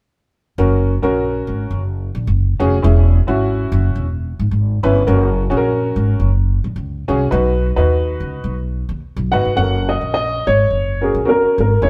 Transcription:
0.58 upright bass F#1, upright piano C#4 F#4 A#4
1.02 upright bass A#1, upright piano C#4 F#4 A#4
1.47 upright bass G#1
1.71 upright bass F#1
2.15 upright bass A#1
2.27 upright bass F#1
2.59 upright bass F1, upright piano C#4 F#4 G#4
2.82 upright bass E1, upright piano C#4 E4 G#4
3.27 upright bass G#1, upright piano C#4 E4 F#4
3.72 upright bass F#1
3.95 upright bass E1
4.39 upright bass G#1
4.51 upright bass G#1
4.83 upright bass G1, upright piano C#4 E4 B4
5.07 upright bass F#1, upright piano C#4 F#4 A#4
5.50 upright bass A#1, upright piano C#4 F#4 G#4
5.57 upright piano A#4
5.96 upright bass G#1
6.20 upright bass F#1
6.64 upright bass A#1
6.76 upright bass C#2
7.08 upright bass C2, upright piano C#4 F#4 G#4
7.31 upright bass B1, upright piano D#4 F#4 B4
7.76 upright bass D#2, upright piano D#4 F#4 B4
8.20 upright bass C#2
8.44 upright bass B1
8.89 upright bass D#2
9.17 upright bass B1
9.32 upright bass G#1, upright piano D#4 F#4 B4, grand piano F#5
9.45 upright bass G1
9.56 upright bass F#1, upright piano C#4 F#4 A4, grand piano F#5
9.62 upright piano A#4
9.89 grand piano D#5
10.01 upright bass A#1
10.14 grand piano D#5
10.47 upright bass G#1, grand piano C#5
10.71 upright bass F#1
11.01 upright piano C#4 F#4 A#4, grand piano G#4
11.14 upright bass A#1
11.25 upright piano C#4 F#4 A#4, grand piano A#4
11.42 muted upright bass stroke
11.58 upright bass G#1, grand piano A#4
11.82 upright bass E1, upright piano C#4 E4 G#4, grand piano C#5

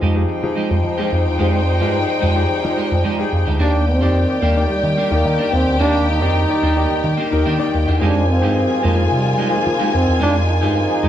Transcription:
Already playing: grand piano F3 D#4 G4 G#4, french horn section F3 G#3 C4 D#4 F4
0.02 picked electric bass F2, clean electric guitar G#3 D#4 G4
0.15 grand piano F3 D#4 G4 G#4, muted clean electric guitar stroke
0.29 string section D#4 C5 G5, muted clean electric guitar stroke
0.42 grand piano F3 D#4 G4 G#4, picked electric bass F3, muted clean electric guitar stroke
0.56 clean electric guitar G#3 D#4 G4
0.70 picked electric bass F2, muted clean electric guitar stroke
0.84 picked electric bass F3, muted clean electric guitar stroke
0.98 grand piano F3 D#4 G4 G#4, clean electric guitar G#3 D#4 G4
1.11 picked electric bass F2, muted clean electric guitar stroke
1.26 picked electric bass E2, muted clean electric guitar stroke
1.39 picked electric bass F2, grand piano F3 D#4 G4 G#4, clean electric guitar G#3 D#4 G4, french horn section D5
1.53 muted clean electric guitar stroke
1.66 muted clean electric guitar stroke
1.79 picked electric bass G2, grand piano F3 D#4 G4 G#4, clean electric guitar G#3 D#4 G4
2.08 muted clean electric guitar stroke
2.21 picked electric bass F2, clean electric guitar G#3 D#4 G4
2.35 grand piano F3 D#4 G4 G#4, muted clean electric guitar stroke
2.49 muted clean electric guitar stroke
2.63 grand piano F3 D#4 G4 G#4, picked electric bass F3, muted clean electric guitar stroke
2.76 clean electric guitar G#3 D#4 G4
2.90 picked electric bass F2, muted clean electric guitar stroke
3.04 picked electric bass F3, clean electric guitar G#3 D#4 G4
3.18 grand piano F3 D#4 G4 G#4, muted clean electric guitar stroke
3.31 picked electric bass F2, muted clean electric guitar stroke
3.46 picked electric bass D2, clean electric guitar G#3 D#4 G4
3.59 picked electric bass D#2, grand piano D#3 D#4 G4 D5, french horn section D#3 G3 A#3 A#4 D5, clean electric guitar A#3 D4 G4, trombone D4, string section G4 G5
3.73 muted clean electric guitar stroke
3.87 trombone C4, muted clean electric guitar stroke
4.01 picked electric bass F2, grand piano D#3 D#4 G4 D5, clean electric guitar A#3 D4 G4
4.28 grand piano D#3 D#4 G4 D5, muted clean electric guitar stroke
4.42 picked electric bass D#2, clean electric guitar A#3 D4 G4, trombone A#3
4.56 grand piano D#3 D#4 G4 D5, muted clean electric guitar stroke
4.69 trombone G3, muted clean electric guitar stroke, muted picked electric bass stroke
4.83 picked electric bass D#3, muted clean electric guitar stroke
4.97 clean electric guitar A#3 D4 G4
5.11 picked electric bass D#2, grand piano D#3 D#4 G4 D5, trombone A#3, muted clean electric guitar stroke
5.24 picked electric bass D#3, muted clean electric guitar stroke
5.38 grand piano D#3 D#4 G4 D5, clean electric guitar A#3 D4 G4
5.52 picked electric bass D#2, trombone C4, muted clean electric guitar stroke
5.66 picked electric bass D2, muted clean electric guitar stroke
5.79 picked electric bass D#2, grand piano D#3 D#4 G4 D5, clean electric guitar A#3 D4 G4, trombone D4, french horn section D#4
5.94 muted clean electric guitar stroke
6.08 trombone D#4, muted clean electric guitar stroke
6.21 picked electric bass F2, grand piano D#3 D#4 G4 D5, clean electric guitar A#3 D4 G4
6.48 grand piano D#3 D#4 G4 D5, muted clean electric guitar stroke
6.62 picked electric bass D#2, clean electric guitar A#3 D4 G4
6.76 grand piano D#3 D#4 G4 D5, muted clean electric guitar stroke
6.90 muted clean electric guitar stroke, muted picked electric bass stroke
7.04 picked electric bass D#3, muted clean electric guitar stroke
7.17 clean electric guitar A#3 D4 G4
7.30 picked electric bass D#2, grand piano D#3 D#4 G4 A#4, muted clean electric guitar stroke
7.46 picked electric bass D#3, clean electric guitar A#3 D4 G4
7.58 grand piano D#3 D#4 G4 D5, muted clean electric guitar stroke
7.73 picked electric bass D#2, muted clean electric guitar stroke
7.87 picked electric bass E2, clean electric guitar A#3 D4 G4
7.99 picked electric bass F2, french horn section D#3 F3 C4, grand piano F3 D#4 G4 G#4, clean electric guitar G#3 D#4 G4, trombone D4, string section F4 G#5
8.16 muted clean electric guitar stroke
8.29 trombone C4, muted clean electric guitar stroke
8.41 picked electric bass G2, grand piano F3 D#4 G4 G#4, clean electric guitar G#3 D#4 G4
8.68 grand piano F3 D#4 G4 G#4, muted clean electric guitar stroke
8.83 picked electric bass F2, clean electric guitar G#3 D#4 G4, trombone A#3
8.95 grand piano F3 D#4 F4 G#4, muted clean electric guitar stroke
9.10 picked electric bass C3, trombone G3, muted clean electric guitar stroke
9.24 muted clean electric guitar stroke
9.38 clean electric guitar G#3 D#4 G4
9.50 grand piano F3 D#4 G4 G#4, trombone A#3, muted clean electric guitar stroke
9.65 picked electric bass F3, muted clean electric guitar stroke
9.78 grand piano F3 D#4 G4 G#4, clean electric guitar G#3 D#4 G4
9.93 picked electric bass F2, trombone C4, muted clean electric guitar stroke
10.06 picked electric bass E2, muted clean electric guitar stroke
10.19 picked electric bass F2, grand piano F3 D#4 G4 G#4, clean electric guitar G#3 D#4 G4, trombone D4
10.34 muted clean electric guitar stroke
10.48 trombone D#4, muted clean electric guitar stroke
10.61 picked electric bass G2, grand piano F3 D#4 G4 G#4, clean electric guitar G#3 D#4 G4
10.88 grand piano F3 D#4 G4 G#4, muted clean electric guitar stroke
11.03 picked electric bass F2, clean electric guitar G#3 D#4 G4

